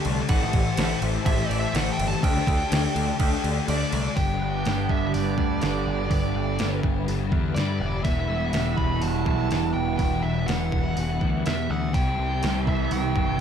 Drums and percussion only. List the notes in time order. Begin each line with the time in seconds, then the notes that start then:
0.05 crash
0.29 kick, crash
0.42 snare
0.53 kick, crash
0.77 snare, crash
1.02 crash
1.26 kick, crash
1.51 crash
1.75 snare, crash
1.99 crash
2.23 kick, crash
2.37 snare
2.47 kick, crash
2.72 snare, crash
2.96 crash
3.20 kick, crash
3.44 crash
3.68 crash
3.92 crash
4.17 kick, open hi-hat
4.65 snare, open hi-hat
4.89 kick
5.14 open hi-hat
5.38 kick
5.61 snare, open hi-hat
6.11 kick, open hi-hat
6.59 snare, open hi-hat
6.83 kick
7.08 open hi-hat
7.32 kick
7.56 snare, open hi-hat
8.05 kick, open hi-hat
8.53 snare, open hi-hat
8.78 kick
9.02 open hi-hat
9.26 kick
9.51 snare, open hi-hat
9.99 kick, open hi-hat
10.48 snare, open hi-hat
10.72 kick
10.97 open hi-hat
11.21 kick
11.46 snare, open hi-hat
11.94 kick, open hi-hat
12.43 snare, open hi-hat
12.67 kick
12.91 open hi-hat
13.16 kick